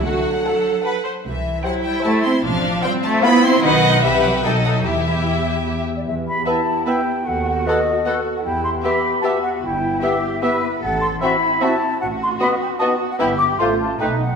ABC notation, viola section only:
X:1
M:3/4
L:1/8
Q:1/4=150
K:Dmix
V:1 name="Viola section"
F2 A2 B c | [K:Em] z2 E4 | D2 C2 E2 | ^D2 G2 D2 |
E4- E z | z2 B,2 B,2 | z2 B,2 B,2 | z2 B,2 B,2 |
z2 B,2 B,2 | z2 C2 C2 | z2 B,2 B,2 | B,2 A,2 A,2 |]